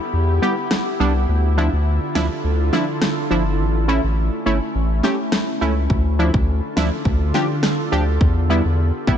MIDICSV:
0, 0, Header, 1, 5, 480
1, 0, Start_track
1, 0, Tempo, 576923
1, 1070, Time_signature, 4, 2, 24, 8
1, 7635, End_track
2, 0, Start_track
2, 0, Title_t, "Ambient pad"
2, 0, Program_c, 0, 92
2, 0, Note_on_c, 0, 59, 84
2, 0, Note_on_c, 0, 64, 79
2, 0, Note_on_c, 0, 67, 93
2, 1051, Note_off_c, 0, 59, 0
2, 1051, Note_off_c, 0, 67, 0
2, 1068, Note_on_c, 0, 65, 76
2, 1069, Note_on_c, 0, 62, 77
2, 1069, Note_on_c, 0, 69, 89
2, 1070, Note_on_c, 0, 50, 82
2, 2970, Note_off_c, 0, 62, 0
2, 2970, Note_off_c, 0, 65, 0
2, 2970, Note_off_c, 0, 69, 0
2, 2971, Note_off_c, 0, 50, 0
2, 2991, Note_on_c, 0, 57, 87
2, 2991, Note_on_c, 0, 61, 76
2, 4891, Note_off_c, 0, 57, 0
2, 4891, Note_off_c, 0, 61, 0
2, 4909, Note_on_c, 0, 69, 91
2, 4910, Note_on_c, 0, 50, 82
2, 4910, Note_on_c, 0, 62, 77
2, 4910, Note_on_c, 0, 65, 75
2, 6810, Note_off_c, 0, 69, 0
2, 6811, Note_off_c, 0, 50, 0
2, 6811, Note_off_c, 0, 62, 0
2, 6811, Note_off_c, 0, 65, 0
2, 6829, Note_on_c, 0, 59, 84
2, 6829, Note_on_c, 0, 67, 97
2, 7635, Note_off_c, 0, 59, 0
2, 7635, Note_off_c, 0, 64, 0
2, 7635, Note_off_c, 0, 67, 0
2, 7635, End_track
3, 0, Start_track
3, 0, Title_t, "Synth stab"
3, 0, Program_c, 1, 62
3, 348, Note_on_c, 1, 55, 79
3, 350, Note_on_c, 1, 59, 73
3, 351, Note_on_c, 1, 67, 95
3, 451, Note_off_c, 1, 55, 0
3, 452, Note_off_c, 1, 59, 0
3, 453, Note_off_c, 1, 67, 0
3, 829, Note_on_c, 1, 55, 88
3, 831, Note_on_c, 1, 59, 79
3, 833, Note_on_c, 1, 62, 94
3, 931, Note_off_c, 1, 55, 0
3, 932, Note_off_c, 1, 59, 0
3, 933, Note_off_c, 1, 62, 0
3, 1308, Note_on_c, 1, 53, 83
3, 1310, Note_on_c, 1, 62, 81
3, 1312, Note_on_c, 1, 64, 91
3, 1411, Note_off_c, 1, 53, 0
3, 1412, Note_off_c, 1, 62, 0
3, 1413, Note_off_c, 1, 64, 0
3, 1788, Note_on_c, 1, 53, 81
3, 1790, Note_on_c, 1, 62, 79
3, 1791, Note_on_c, 1, 64, 94
3, 1891, Note_off_c, 1, 53, 0
3, 1892, Note_off_c, 1, 62, 0
3, 1892, Note_off_c, 1, 64, 0
3, 2267, Note_on_c, 1, 53, 78
3, 2270, Note_on_c, 1, 62, 74
3, 2271, Note_on_c, 1, 64, 91
3, 2370, Note_off_c, 1, 53, 0
3, 2372, Note_off_c, 1, 62, 0
3, 2372, Note_off_c, 1, 64, 0
3, 2748, Note_on_c, 1, 53, 89
3, 2750, Note_on_c, 1, 62, 82
3, 2751, Note_on_c, 1, 64, 94
3, 2851, Note_off_c, 1, 53, 0
3, 2852, Note_off_c, 1, 62, 0
3, 2852, Note_off_c, 1, 64, 0
3, 3228, Note_on_c, 1, 57, 83
3, 3230, Note_on_c, 1, 61, 81
3, 3231, Note_on_c, 1, 64, 92
3, 3331, Note_off_c, 1, 57, 0
3, 3332, Note_off_c, 1, 61, 0
3, 3332, Note_off_c, 1, 64, 0
3, 3708, Note_on_c, 1, 57, 84
3, 3709, Note_on_c, 1, 61, 80
3, 3711, Note_on_c, 1, 64, 94
3, 3811, Note_off_c, 1, 57, 0
3, 3811, Note_off_c, 1, 61, 0
3, 3812, Note_off_c, 1, 64, 0
3, 4188, Note_on_c, 1, 57, 78
3, 4189, Note_on_c, 1, 61, 74
3, 4192, Note_on_c, 1, 67, 90
3, 4291, Note_off_c, 1, 57, 0
3, 4291, Note_off_c, 1, 61, 0
3, 4293, Note_off_c, 1, 67, 0
3, 4667, Note_on_c, 1, 57, 91
3, 4669, Note_on_c, 1, 61, 83
3, 4671, Note_on_c, 1, 64, 93
3, 4771, Note_off_c, 1, 57, 0
3, 4771, Note_off_c, 1, 61, 0
3, 4772, Note_off_c, 1, 64, 0
3, 5148, Note_on_c, 1, 53, 85
3, 5149, Note_on_c, 1, 62, 80
3, 5151, Note_on_c, 1, 64, 91
3, 5251, Note_off_c, 1, 53, 0
3, 5251, Note_off_c, 1, 62, 0
3, 5252, Note_off_c, 1, 64, 0
3, 5627, Note_on_c, 1, 53, 81
3, 5629, Note_on_c, 1, 62, 75
3, 5631, Note_on_c, 1, 64, 94
3, 5730, Note_off_c, 1, 53, 0
3, 5731, Note_off_c, 1, 62, 0
3, 5732, Note_off_c, 1, 64, 0
3, 6108, Note_on_c, 1, 53, 81
3, 6109, Note_on_c, 1, 62, 71
3, 6111, Note_on_c, 1, 67, 91
3, 6211, Note_off_c, 1, 53, 0
3, 6211, Note_off_c, 1, 62, 0
3, 6212, Note_off_c, 1, 67, 0
3, 6587, Note_on_c, 1, 53, 90
3, 6589, Note_on_c, 1, 62, 82
3, 6590, Note_on_c, 1, 67, 98
3, 6690, Note_off_c, 1, 53, 0
3, 6691, Note_off_c, 1, 62, 0
3, 6692, Note_off_c, 1, 67, 0
3, 7067, Note_on_c, 1, 55, 84
3, 7069, Note_on_c, 1, 59, 77
3, 7071, Note_on_c, 1, 64, 92
3, 7171, Note_off_c, 1, 55, 0
3, 7171, Note_off_c, 1, 59, 0
3, 7172, Note_off_c, 1, 64, 0
3, 7547, Note_on_c, 1, 55, 82
3, 7548, Note_on_c, 1, 59, 78
3, 7550, Note_on_c, 1, 64, 94
3, 7635, Note_off_c, 1, 55, 0
3, 7635, Note_off_c, 1, 59, 0
3, 7635, Note_off_c, 1, 64, 0
3, 7635, End_track
4, 0, Start_track
4, 0, Title_t, "Sub bass"
4, 0, Program_c, 2, 38
4, 108, Note_on_c, 2, 40, 102
4, 330, Note_off_c, 2, 40, 0
4, 830, Note_on_c, 2, 36, 94
4, 1050, Note_off_c, 2, 36, 0
4, 1069, Note_on_c, 2, 38, 114
4, 1407, Note_off_c, 2, 38, 0
4, 1437, Note_on_c, 2, 38, 103
4, 1657, Note_off_c, 2, 38, 0
4, 1789, Note_on_c, 2, 38, 79
4, 1906, Note_off_c, 2, 38, 0
4, 2029, Note_on_c, 2, 38, 97
4, 2250, Note_off_c, 2, 38, 0
4, 2749, Note_on_c, 2, 31, 86
4, 2989, Note_on_c, 2, 33, 102
4, 3002, Note_off_c, 2, 31, 0
4, 3327, Note_off_c, 2, 33, 0
4, 3357, Note_on_c, 2, 33, 102
4, 3578, Note_off_c, 2, 33, 0
4, 3710, Note_on_c, 2, 31, 92
4, 3827, Note_off_c, 2, 31, 0
4, 3950, Note_on_c, 2, 33, 99
4, 4170, Note_off_c, 2, 33, 0
4, 4669, Note_on_c, 2, 37, 89
4, 4890, Note_off_c, 2, 37, 0
4, 4909, Note_on_c, 2, 38, 114
4, 5247, Note_off_c, 2, 38, 0
4, 5274, Note_on_c, 2, 38, 92
4, 5496, Note_off_c, 2, 38, 0
4, 5628, Note_on_c, 2, 38, 93
4, 5746, Note_off_c, 2, 38, 0
4, 5868, Note_on_c, 2, 38, 102
4, 6089, Note_off_c, 2, 38, 0
4, 6590, Note_on_c, 2, 38, 91
4, 6810, Note_off_c, 2, 38, 0
4, 6829, Note_on_c, 2, 40, 109
4, 7167, Note_off_c, 2, 40, 0
4, 7196, Note_on_c, 2, 40, 106
4, 7417, Note_off_c, 2, 40, 0
4, 7550, Note_on_c, 2, 38, 85
4, 7635, Note_off_c, 2, 38, 0
4, 7635, End_track
5, 0, Start_track
5, 0, Title_t, "Drums"
5, 589, Note_on_c, 9, 37, 87
5, 589, Note_on_c, 9, 38, 105
5, 672, Note_off_c, 9, 37, 0
5, 672, Note_off_c, 9, 38, 0
5, 1792, Note_on_c, 9, 38, 103
5, 1875, Note_off_c, 9, 38, 0
5, 2270, Note_on_c, 9, 38, 64
5, 2353, Note_off_c, 9, 38, 0
5, 2509, Note_on_c, 9, 37, 85
5, 2509, Note_on_c, 9, 38, 101
5, 2592, Note_off_c, 9, 37, 0
5, 2592, Note_off_c, 9, 38, 0
5, 4189, Note_on_c, 9, 38, 62
5, 4272, Note_off_c, 9, 38, 0
5, 4428, Note_on_c, 9, 37, 87
5, 4428, Note_on_c, 9, 38, 105
5, 4511, Note_off_c, 9, 37, 0
5, 4511, Note_off_c, 9, 38, 0
5, 4909, Note_on_c, 9, 36, 92
5, 4992, Note_off_c, 9, 36, 0
5, 5275, Note_on_c, 9, 36, 90
5, 5358, Note_off_c, 9, 36, 0
5, 5631, Note_on_c, 9, 38, 102
5, 5715, Note_off_c, 9, 38, 0
5, 5868, Note_on_c, 9, 36, 81
5, 5951, Note_off_c, 9, 36, 0
5, 6109, Note_on_c, 9, 38, 64
5, 6192, Note_off_c, 9, 38, 0
5, 6347, Note_on_c, 9, 37, 84
5, 6347, Note_on_c, 9, 38, 108
5, 6431, Note_off_c, 9, 37, 0
5, 6431, Note_off_c, 9, 38, 0
5, 6829, Note_on_c, 9, 36, 93
5, 6912, Note_off_c, 9, 36, 0
5, 7550, Note_on_c, 9, 36, 88
5, 7633, Note_off_c, 9, 36, 0
5, 7635, End_track
0, 0, End_of_file